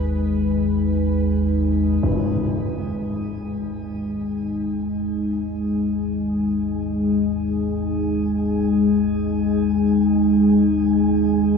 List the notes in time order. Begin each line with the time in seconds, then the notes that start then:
Already playing: G#1 D#2 G#3 D#4 G#4 B4
2.03 G#1 D#2, impact